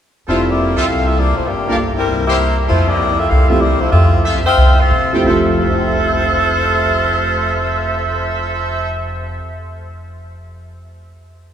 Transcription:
0.27 0.74 F1 medium
0.27 0.74 G3 medium
0.27 0.46 A3 medium
0.27 0.74 C4 soft
0.27 0.46 E4 medium
0.27 0.74 E4 soft
0.27 0.40 F4 medium
0.27 0.47 F4 medium
0.27 0.74 F4 soft
0.27 0.40 A4 medium
0.27 0.74 A4 medium
0.27 0.40 C5 medium
0.27 0.47 C5 medium
0.27 0.40 E5 medium
0.48 0.77 A#3 medium
0.48 0.77 E4 medium
0.48 0.77 G4 medium
0.48 0.78 D5 medium
0.76 0.87 C2 medium
0.76 0.85 C4 medium
0.76 0.84 F4 medium
0.76 0.88 F4 medium
0.76 0.84 A4 medium
0.76 0.86 A4 medium
0.76 0.84 C5 medium
0.76 0.84 E5 medium
0.76 0.88 E5 medium
0.86 1.34 C2 medium
0.86 1.04 C4 medium
0.86 1.06 E4 medium
0.86 1.05 A4 medium
0.86 1.06 F5 medium
1.05 1.18 C4 medium
1.05 1.18 F4 medium
1.05 1.18 A4 medium
1.05 1.18 E5 medium
1.18 1.38 A#3 medium
1.18 1.34 E4 medium
1.18 1.38 G4 medium
1.18 1.37 D5 medium
1.35 1.48 A3 medium
1.35 1.48 E4 medium
1.35 1.48 F4 medium
1.35 1.48 C5 medium
1.35 muted upright bass stroke soft
1.47 2.06 G1 medium
1.47 1.79 F3 medium
1.47 1.78 A#3 medium
1.47 1.78 D4 medium
1.47 1.78 G4 medium
1.68 1.78 G3 medium
1.68 1.78 A#3 medium
1.68 1.78 D4 medium
1.68 1.78 F4 soft
1.68 1.76 G4 medium
1.68 1.78 A4 medium
1.68 1.76 A#4 medium
1.68 1.76 D5 medium
1.68 1.76 F5 medium
1.96 2.25 G3 medium
1.96 2.25 C4 medium
1.96 2.25 E4 medium
1.96 2.26 A#4 medium
2.09 2.66 C2 medium
2.27 2.56 A#3 medium
2.27 2.56 E4 medium
2.27 2.56 G4 medium
2.27 2.36 G4 medium
2.27 2.36 A#4 medium
2.27 2.56 C5 medium
2.27 2.36 C5 medium
2.27 2.36 E5 medium
2.67 3.28 F2 medium
2.67 2.87 A3 medium
2.67 2.86 E4 medium
2.67 2.87 F4 medium
2.67 3.15 F4 medium
2.67 3.15 A4 medium
2.67 2.87 C5 medium
2.67 3.15 C5 medium
2.67 3.15 E5 medium
2.87 3.18 A#3 medium
2.87 3.18 E4 medium
2.87 3.18 G4 medium
2.87 3.18 D5 loud
3.18 3.28 C4 medium
3.18 3.30 F4 medium
3.18 3.28 A4 medium
3.18 3.30 E5 medium
3.29 3.78 C2 medium
3.29 3.47 C4 medium
3.29 3.49 E4 medium
3.29 3.46 A4 medium
3.29 3.49 F5 medium
3.47 3.60 F3 medium
3.47 3.60 A3 medium
3.47 3.60 C4 medium
3.47 3.61 C4 medium
3.47 3.60 E4 medium
3.47 3.60 F4 medium
3.47 3.61 G4 medium
3.47 3.60 A4 medium
3.47 3.60 E5 medium
3.60 3.81 A#3 medium
3.60 3.78 E4 medium
3.60 3.81 G4 medium
3.60 3.81 D5 medium
3.79 3.92 A3 medium
3.79 3.92 E4 medium
3.79 3.90 F4 medium
3.79 3.92 C5 medium
3.79 muted upright bass stroke soft
3.90 4.42 F2 medium
3.90 4.21 C4 medium
3.90 4.22 F4 medium
3.90 4.22 A4 medium
3.90 4.22 E5 medium
4.24 4.38 F4 medium
4.24 4.38 A4 medium
4.24 4.38 C5 medium
4.24 4.38 E5 medium
4.45 4.77 F4 medium
4.45 4.76 C5 medium
4.45 4.76 E5 medium
4.45 4.76 G5 medium
4.45 muted upright bass stroke soft
4.57 4.89 C2 medium
4.78 5.13 C4 medium
4.78 5.13 A4 medium
4.78 5.13 E5 medium
4.78 5.13 F5 medium
4.91 5.23 C3 medium
5.12 5.26 F3 medium
5.12 5.26 A3 medium
5.12 5.27 C4 medium
5.12 5.27 E4 medium
5.12 5.22 F4 medium
5.12 5.27 G4 medium
5.12 5.22 A4 medium
5.12 5.22 C5 medium
5.12 5.22 G5 medium
5.24 9.38 F1 medium
5.24 9.44 F2 medium
5.24 9.45 F3 soft
5.24 9.45 A3 soft
5.24 8.87 F4 medium
5.24 8.90 A4 medium
5.24 8.87 A4 medium
5.24 8.90 C5 medium
5.24 8.87 C5 medium
5.24 8.90 E5 medium
5.24 8.87 E5 medium
5.29 9.46 F4 medium
5.29 9.48 G4 medium
5.63 9.57 C5 soft
5.70 9.61 E5 soft
5.78 9.65 G5 soft
5.88 9.69 C6 soft
5.97 9.74 E6 soft
6.09 9.80 G6 soft
6.20 9.85 C7 soft

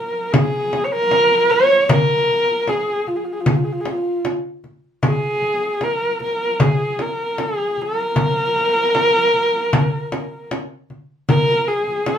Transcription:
0.00 0.34 A#4 medium
0.33 0.85 G#4 loud
0.33 frame drum medium
0.73 frame drum medium
0.84 0.93 C#5 medium
0.92 1.51 A#4 loud
1.11 frame drum medium
1.50 1.91 C#5 loud
1.50 frame drum soft
1.89 2.70 A#4 loud
1.89 frame drum medium
2.29 frame drum soft
2.68 3.09 G#4 medium
2.68 frame drum medium
3.07 3.17 F4 medium
3.07 frame drum soft
3.16 3.26 G#4 medium
3.24 3.34 F4 medium
3.32 3.42 G#4 medium
3.40 3.49 F4 medium
3.46 3.58 G#4 medium
3.46 frame drum medium
3.56 3.66 F4 medium
3.64 3.74 G#4 medium
3.72 3.82 F4 medium
3.81 3.93 G#4 medium
3.85 frame drum medium
3.91 4.26 F4 medium
4.25 frame drum medium
4.64 frame drum soft
5.03 5.85 G#4 loud
5.03 frame drum medium
5.42 frame drum soft
5.81 6.21 A#4 loud
5.81 frame drum medium
6.21 6.63 A#4 medium
6.21 frame drum soft
6.60 7.03 G#4 medium
6.60 frame drum medium
6.99 7.43 A#4 medium
6.99 frame drum soft
7.38 7.83 G#4 medium
7.38 frame drum medium
7.77 frame drum soft
7.82 10.53 A#4 loud
8.16 frame drum medium
8.55 frame drum soft
8.95 frame drum medium
9.34 frame drum soft
9.73 frame drum medium
10.12 frame drum medium
10.51 frame drum medium
10.90 frame drum soft
11.29 11.70 A#4 loud
11.29 frame drum medium
11.68 12.08 G#4 medium
11.88 frame drum soft
12.06 12.18 A#4 medium
12.06 frame drum medium

